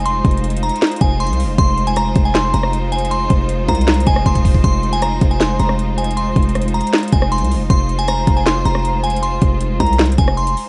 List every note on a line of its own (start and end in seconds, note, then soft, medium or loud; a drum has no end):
0.00 0.22 F1 loud
0.00 7.66 G#3 medium
0.00 1.55 D#4 medium
0.00 7.66 F4 medium
0.00 7.66 C5 medium
0.05 0.41 C6 medium
0.05 closed hi-hat medium
0.25 0.70 F1 loud
0.25 kick medium
0.25 closed hi-hat soft
0.31 closed hi-hat medium
0.37 closed hi-hat medium
0.44 closed hi-hat medium
0.50 closed hi-hat medium
0.56 closed hi-hat medium
0.63 0.81 A#5 medium
0.63 closed hi-hat soft
0.69 closed hi-hat medium
0.76 closed hi-hat medium
0.82 snare loud
0.82 clap medium
0.82 closed hi-hat soft
0.87 closed hi-hat medium
0.91 closed hi-hat medium
0.96 closed hi-hat medium
1.01 1.31 F1 loud
1.01 1.19 G#5 medium
1.01 kick loud
1.01 closed hi-hat medium
1.20 1.38 C6 medium
1.20 closed hi-hat medium
1.27 1.46 C2 loud
1.27 closed hi-hat medium
1.33 closed hi-hat medium
1.40 open hi-hat medium
1.44 1.58 F1 loud
1.58 2.13 F1 loud
1.58 10.69 D#4 medium
1.58 1.85 C6 loud
1.58 kick loud
1.58 closed hi-hat medium
1.77 closed hi-hat soft
1.87 1.96 G#5 medium
1.87 closed hi-hat medium
1.96 2.24 A#5 medium
1.96 cross-stick medium
1.96 closed hi-hat medium
2.16 2.52 F1 loud
2.16 kick loud
2.16 closed hi-hat medium
2.25 2.34 G#5 medium
2.35 2.53 C6 medium
2.35 snare loud
2.35 clap loud
2.35 closed hi-hat medium
2.54 3.27 F1 loud
2.54 2.90 A#5 medium
2.54 closed hi-hat medium
2.63 cross-stick medium
2.73 closed hi-hat medium
2.92 3.10 G#5 medium
2.92 closed hi-hat medium
2.98 closed hi-hat medium
3.05 closed hi-hat medium
3.11 3.47 C6 medium
3.11 closed hi-hat medium
3.30 3.67 F1 loud
3.30 kick medium
3.30 closed hi-hat medium
3.49 closed hi-hat medium
3.69 4.05 C2 loud
3.69 3.87 A#5 medium
3.69 kick loud
3.69 closed hi-hat medium
3.75 closed hi-hat medium
3.81 closed hi-hat medium
3.88 snare loud
3.88 clap loud
3.88 closed hi-hat soft
3.94 closed hi-hat medium
4.00 closed hi-hat medium
4.07 4.25 F1 loud
4.07 4.25 G#5 medium
4.07 kick loud
4.07 closed hi-hat medium
4.16 cross-stick medium
4.26 4.63 F1 loud
4.26 4.44 C6 medium
4.26 kick medium
4.26 closed hi-hat soft
4.35 kick medium
4.35 closed hi-hat medium
4.45 kick loud
4.45 open hi-hat medium
4.55 kick medium
4.64 5.19 F1 loud
4.64 4.91 C6 loud
4.64 kick loud
4.64 closed hi-hat medium
4.83 closed hi-hat soft
4.93 5.02 G#5 medium
4.93 closed hi-hat medium
5.02 5.29 A#5 medium
5.02 cross-stick medium
5.02 closed hi-hat medium
5.21 5.58 F1 loud
5.21 kick loud
5.21 closed hi-hat medium
5.31 5.40 G#5 medium
5.40 5.58 C6 medium
5.40 snare loud
5.40 clap medium
5.40 closed hi-hat medium
5.60 6.33 F1 loud
5.60 5.96 A#5 medium
5.60 closed hi-hat medium
5.69 cross-stick medium
5.79 closed hi-hat medium
5.98 6.16 G#5 medium
5.98 closed hi-hat medium
6.04 closed hi-hat medium
6.11 closed hi-hat medium
6.17 6.53 C6 medium
6.17 closed hi-hat medium
6.36 6.82 F1 loud
6.36 kick medium
6.36 closed hi-hat soft
6.43 closed hi-hat medium
6.49 closed hi-hat medium
6.55 cross-stick medium
6.55 closed hi-hat medium
6.62 closed hi-hat medium
6.68 closed hi-hat medium
6.74 6.92 A#5 medium
6.74 closed hi-hat soft
6.81 closed hi-hat medium
6.87 closed hi-hat medium
6.93 snare loud
6.93 clap loud
6.93 closed hi-hat soft
6.98 closed hi-hat medium
7.03 closed hi-hat medium
7.08 closed hi-hat medium
7.12 7.43 F1 loud
7.12 7.30 G#5 medium
7.12 kick loud
7.12 closed hi-hat medium
7.22 cross-stick medium
7.32 7.50 C6 medium
7.32 closed hi-hat medium
7.38 7.57 C2 loud
7.38 closed hi-hat medium
7.44 closed hi-hat medium
7.51 open hi-hat medium
7.56 7.69 F1 loud
7.70 8.25 F1 loud
7.70 10.69 G#3 medium
7.70 10.69 F4 medium
7.70 10.69 C5 medium
7.70 7.97 C6 medium
7.70 kick loud
7.70 closed hi-hat medium
7.89 closed hi-hat soft
7.99 8.08 G#5 medium
7.99 closed hi-hat medium
8.08 8.35 A#5 medium
8.08 cross-stick medium
8.08 closed hi-hat medium
8.27 8.64 F1 loud
8.27 kick loud
8.27 closed hi-hat medium
8.37 8.46 G#5 medium
8.46 8.64 C6 medium
8.46 snare loud
8.46 clap loud
8.46 closed hi-hat medium
8.65 9.39 F1 loud
8.65 9.01 A#5 medium
8.65 closed hi-hat medium
8.75 cross-stick medium
8.85 closed hi-hat medium
9.04 9.21 G#5 medium
9.04 closed hi-hat medium
9.10 closed hi-hat medium
9.16 closed hi-hat medium
9.23 9.59 C6 medium
9.23 closed hi-hat medium
9.42 9.78 F1 loud
9.42 kick medium
9.42 closed hi-hat medium
9.61 closed hi-hat medium
9.80 10.17 C2 loud
9.80 9.98 A#5 loud
9.80 kick loud
9.80 closed hi-hat medium
9.86 closed hi-hat medium
9.93 closed hi-hat medium
9.99 snare loud
9.99 clap loud
9.99 closed hi-hat soft
10.06 closed hi-hat medium
10.12 closed hi-hat medium
10.18 10.55 F1 loud
10.18 10.36 G#5 medium
10.18 kick loud
10.18 closed hi-hat medium
10.28 cross-stick medium
10.37 10.55 C6 medium
10.37 closed hi-hat soft
10.47 closed hi-hat medium
10.57 open hi-hat medium